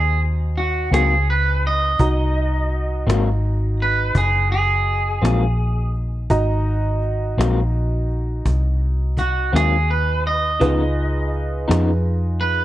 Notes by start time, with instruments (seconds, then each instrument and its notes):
Already playing: fingered electric bass D#2, upright piano C4 D#4 F#4 A#5, clean electric guitar G#4
0.56 clean electric guitar F#4, cajon slap
0.91 fingered electric bass C#2, clean electric guitar G#2 F#3 A#3 C4 G#4, cajon slap
1.30 clean electric guitar B4
1.64 clean electric guitar D#5, cajon slap
1.99 fingered electric bass C2, upright piano D#4 F#4 D#5 A#5, cajon bass
2.72 cajon slap
3.07 fingered electric bass G#1, clean electric guitar G#2 F#3 A#3 C4, cajon slap
3.79 clean electric guitar B4, cajon slap
4.15 fingered electric bass F#1, clean electric guitar G#4, cajon bass
4.52 clean electric guitar G#4
4.87 cajon slap
5.22 fingered electric bass A#1, clean electric guitar G#2 F#3 A#3 C4, cajon slap
5.94 cajon slap
6.30 fingered electric bass G#1, upright piano D#4 F#4 D#5 A#5, cajon bass
7.02 cajon slap
7.37 fingered electric bass A#1, clean electric guitar G#2 F#3 A#3 C4, cajon slap
8.09 cajon slap
8.45 fingered electric bass C2, cajon bass
9.17 clean electric guitar F#4, cajon bass
9.53 fingered electric bass D#2, clean electric guitar G#2 F#3 A#3 C4 G#4, cajon slap
9.90 clean electric guitar B4
10.26 clean electric guitar D#5, cajon slap
10.60 fingered electric bass C#2, clean electric guitar C#3 F3 B3 D#4, upright piano D#4 F4 G#4 B4, cajon bass
11.33 cajon slap
11.68 fingered electric bass F2, clean electric guitar C#3 F3 B3 D#4, cajon slap
12.40 clean electric guitar B4, cajon slap